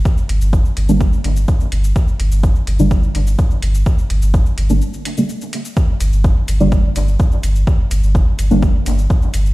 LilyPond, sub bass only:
\new Staff \with { instrumentName = "Sub bass" } { \clef bass \time 4/4 \key g \minor \tempo 4 = 126 r8 g,,16 g,,8 r16 g,,16 g,,8 r16 g,,8 r8 g,,8 | r8 g,,16 g,,8 r16 g,,16 g,,8 r16 g,,8 r8 g,,8 | r8 g,,16 g,,8 r16 g,,16 g,,16 r2 | r8 g,,16 g,,8 r16 g,,16 g,,8 r16 g,,8 r8 g,,8 |
r8 g,,16 g,,8 r16 g,,16 g,,8 r16 g,,8 r8 g,,8 | }